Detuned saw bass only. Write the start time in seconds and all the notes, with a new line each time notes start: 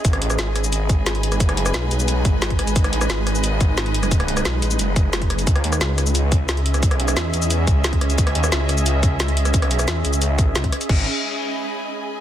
0.05 G#1
0.22 A1
0.39 G#1
1.33 G1
1.60 F#1
1.74 B1
1.91 B1
2.25 G#1
2.76 G#1
2.93 A1
3.10 G#1
4.45 B1
4.62 A1
4.79 F#1
5.47 C#2
5.64 D#2
5.81 C#2
6.75 C2
7.02 B1
7.17 E2
7.34 E2
7.67 C#2
8.18 C#2
8.35 D#2
8.52 C#2
9.46 C2
9.73 B1
9.88 E2
10.05 C#2
10.55 C#2
10.89 G#1